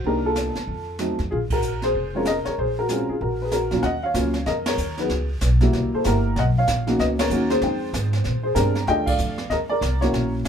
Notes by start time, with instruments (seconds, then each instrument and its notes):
0.04 upright bass C2, upright piano G3 A#3 D4 D#4 G4 A#4, brush sweep
0.26 upright piano F4 A4
0.35 snare, hi-hat pedal
0.55 muted upright bass stroke, snare
0.67 upright bass F2, brush sweep
0.99 upright piano F#3 A3 C4 D#4, snare, hi-hat pedal
1.19 upright bass F2, snare
1.31 upright bass A#1, upright piano F4 G#4, brush sweep
1.50 upright piano F#4 A#4, kick, ride
1.62 hi-hat pedal
1.82 upright piano G#4 C5, snare
1.94 upright bass F1, brush sweep
2.14 upright piano G#3 C4 C#4 F4 A#4 C#5
2.25 upright piano A#4 D#5, snare, hi-hat pedal
2.45 upright piano A#4 C#5, muted upright bass stroke, snare
2.58 upright bass A#1, upright piano G#4 C5, brush sweep
2.79 upright piano F#4 A#4
2.89 upright piano G#3 C4 C#4 F4, snare, hi-hat pedal
3.09 upright piano F4 G#4, muted upright bass stroke
3.20 upright bass A#1, upright piano F#4 A#4, brush sweep
3.42 upright piano G#4 B4
3.51 upright piano F#4 A#4, snare, hi-hat pedal
3.71 upright piano D#2 F#3 A#3 C#4 F4, upright bass A#2, snare
3.83 upright bass D#2, upright piano D#5 F#5, brush sweep, snare
4.03 upright piano C#5 F5
4.14 upright bass C#2, upright piano F#3 A#3 C#4 F4, snare, hi-hat pedal
4.34 snare
4.46 upright bass F2, upright piano A#4 D#5, brush sweep, snare
4.66 upright piano A#4 C#5, snare, ride
4.77 upright bass D#2, hi-hat pedal
4.97 upright piano F#3 B3 D#4 F#4 B4, snare
5.02 upright piano G#4
5.09 upright bass C#2, brush sweep, snare
5.41 upright bass B1, snare, hi-hat pedal
5.61 upright piano G3 A#3 E4 F#4, snare
5.73 upright bass C2, brush sweep, snare
5.93 upright piano A4 C5, muted upright bass stroke
6.04 upright bass G1, upright piano G3 A#3 E4 G4 A#4 F#5, snare, hi-hat pedal
6.36 upright bass B1, upright piano D#5 F#5, brush sweep, snare
6.58 upright piano C#5 F5
6.67 upright bass A#1, snare, hi-hat pedal
6.87 upright piano A#3 C#4 D#4 F#4, snare
6.99 upright bass C#2, upright piano B4 D#5, brush sweep, snare
7.19 upright piano A#4 C#5, snare, ride
7.30 upright bass D#2, upright piano A#3 C#4 D#4 F#4, hi-hat pedal
7.50 upright piano G#4 C5, snare
7.62 upright bass F2, upright piano G#3 C4 D#4 G5, brush sweep, snare
7.93 upright bass G#2, snare, hi-hat pedal
8.13 snare
8.24 upright bass A#2, brush sweep, snare
8.43 upright piano G#4 C5
8.55 upright bass G2, upright piano G#3 C4 D4 G4 A#4, snare, hi-hat pedal
8.75 snare
8.87 upright bass D#2, upright piano A3 D4 F4 G4 D#5 G5, brush sweep, snare
9.06 upright piano D5 F5, kick, crash
9.19 upright bass F2, hi-hat pedal
9.38 snare
9.50 upright bass D2, upright piano A#4 D#5, brush sweep, snare
9.69 upright piano A#4 D5
9.81 upright bass C2, snare, hi-hat pedal
10.01 upright piano A#3 C#4 E4 F#4 A#4 C#5, snare
10.13 upright bass A#1, brush sweep, snare
10.45 upright bass G#1, hi-hat pedal